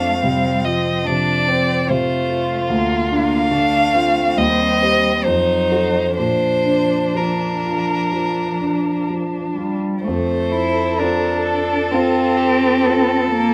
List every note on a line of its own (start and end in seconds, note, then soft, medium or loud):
0.00 1.03 F2 soft
0.00 0.23 A3 soft
0.00 0.48 C4 soft
0.00 0.19 D4 soft
0.00 0.66 F5 medium
0.20 0.90 C3 soft
0.20 0.66 G3 soft
0.20 1.07 C4 soft
0.64 1.07 F3 soft
0.64 1.32 F4 soft
0.64 1.08 D#5 soft
1.05 1.73 C3 soft
1.05 1.91 F3 soft
1.05 1.50 D4 soft
1.05 1.92 D5 medium
1.48 2.12 C4 soft
1.48 1.90 C4 soft
1.89 2.52 C3 soft
1.89 2.70 A3 soft
1.89 3.52 F4 soft
1.89 2.69 C5 medium
2.29 2.69 F4 soft
2.68 4.34 D2 soft
2.68 3.08 A#3 soft
3.09 3.52 A#3 medium
3.09 3.78 D4 soft
3.09 4.40 F5 medium
3.50 4.20 D3 soft
3.50 4.39 A3 soft
3.50 3.95 D4 soft
3.94 5.27 C4 soft
3.94 4.38 F4 soft
4.37 5.23 D#2 soft
4.37 5.26 G3 soft
4.37 5.26 D#5 medium
4.82 5.22 G4 soft
4.82 5.22 C5 soft
5.24 6.15 F2 soft
5.24 6.16 F#3 soft
5.24 6.17 D#4 soft
5.24 6.17 C5 medium
5.72 6.14 F#4 soft
5.72 6.14 A4 soft
6.16 8.07 A#2 soft
6.16 9.51 F3 soft
6.16 9.78 D4 soft
6.16 7.18 C5 medium
6.65 7.42 D4 soft
7.15 7.92 F3 soft
7.15 9.09 A#4 soft
7.65 8.41 F4 soft
8.12 8.89 F3 soft
8.61 9.37 D4 soft
9.10 9.87 F3 soft
9.55 10.05 G3 soft
9.55 10.05 F4 soft
10.04 10.53 A3 soft
10.04 13.54 A4 soft
10.04 11.00 C5 soft
10.08 10.98 F2 soft
10.52 11.00 E4 medium
10.98 11.90 C4 soft
10.98 11.93 D4 medium
10.98 11.90 F4 soft
10.98 11.90 A4 soft
10.98 11.46 A#4 soft
11.47 11.95 A4 soft
11.92 13.32 C4 medium
11.92 12.82 C4 soft
11.92 12.39 F4 soft
11.92 12.82 F4 soft
11.92 12.82 A4 soft
12.37 12.88 G4 soft
12.86 13.54 C4 soft
12.86 13.54 F4 soft
12.86 13.54 A4 medium
12.86 13.54 A4 soft
13.31 13.54 A#3 medium